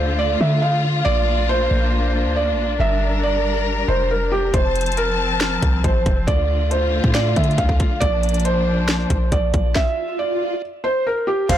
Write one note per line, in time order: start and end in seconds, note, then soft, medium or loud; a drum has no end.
0.00 0.37 D2 loud
0.00 1.04 D3 medium
0.00 1.04 A3 medium
0.00 2.76 F4 medium
0.00 0.16 C5 medium
0.19 0.38 D5 medium
0.41 1.03 D3 loud
0.41 0.60 E5 medium
0.62 1.03 F5 medium
1.05 1.68 A#1 loud
1.05 2.78 A#3 medium
1.05 4.50 D4 medium
1.05 1.46 D5 loud
1.49 2.32 C5 loud
1.71 2.27 A#1 loud
2.25 2.54 D2 loud
2.36 2.77 D5 medium
2.53 2.78 A#1 loud
2.80 3.84 G1 loud
2.80 4.52 G3 medium
2.80 4.52 A#4 medium
2.80 3.21 E5 loud
3.23 3.64 D5 medium
3.88 4.51 F1 loud
3.88 4.08 C5 medium
4.11 4.30 A#4 medium
4.32 4.51 G4 medium
4.54 5.58 F1 loud
4.54 6.26 F3 medium
4.54 6.26 C4 medium
4.54 4.95 C5 medium
4.54 6.26 A5 medium
4.54 kick loud
4.54 closed hi-hat medium
4.76 closed hi-hat medium
4.81 closed hi-hat medium
4.86 closed hi-hat medium
4.92 closed hi-hat medium
4.97 5.80 A#4 medium
4.97 closed hi-hat medium
5.41 snare loud
5.41 closed hi-hat medium
5.62 5.83 C2 loud
5.62 kick medium
5.62 closed hi-hat medium
5.84 6.05 A1 loud
5.84 6.25 C5 medium
5.84 kick loud
5.84 closed hi-hat medium
6.06 6.27 F1 loud
6.06 kick medium
6.06 closed hi-hat medium
6.27 7.01 D2 loud
6.27 8.00 D3 medium
6.27 8.00 A3 medium
6.27 8.00 F4 medium
6.27 6.68 D5 medium
6.27 kick loud
6.27 closed hi-hat medium
6.71 7.12 C5 medium
6.71 closed hi-hat medium
7.04 7.35 A2 loud
7.04 kick loud
7.15 7.34 D5 medium
7.15 snare loud
7.15 closed hi-hat medium
7.36 7.57 D3 loud
7.36 7.56 E5 medium
7.36 kick medium
7.36 closed hi-hat medium
7.44 closed hi-hat medium
7.51 closed hi-hat soft
7.58 7.79 D2 loud
7.58 7.99 F5 medium
7.58 kick loud
7.58 closed hi-hat medium
7.69 kick medium
7.80 kick medium
7.80 closed hi-hat medium
8.00 9.06 A#1 loud
8.00 9.74 F3 medium
8.00 9.74 A#3 medium
8.00 9.74 D4 medium
8.00 8.42 D5 loud
8.00 kick loud
8.00 closed hi-hat medium
8.00 swell medium
8.23 closed hi-hat medium
8.29 closed hi-hat medium
8.34 closed hi-hat medium
8.40 closed hi-hat medium
8.45 9.28 C5 loud
8.45 closed hi-hat medium
8.89 snare loud
8.89 closed hi-hat medium
9.10 9.31 A#1 loud
9.10 kick medium
9.10 closed hi-hat medium
9.32 9.53 A#1 loud
9.32 9.73 D5 medium
9.32 kick loud
9.32 closed hi-hat medium
9.54 9.75 A#1 loud
9.54 kick medium
9.54 closed hi-hat medium
9.75 10.16 E5 medium
9.75 kick loud
9.75 snare medium
10.19 10.60 D5 medium
10.84 11.03 C5 medium
11.07 11.26 A#4 medium
11.27 11.47 G4 medium
11.49 11.58 F1 loud
11.49 11.58 F3 medium
11.49 11.58 C4 medium
11.49 11.58 C5 medium
11.49 11.58 F5 loud
11.49 11.58 A5 medium
11.49 kick loud
11.49 closed hi-hat medium
11.49 crash loud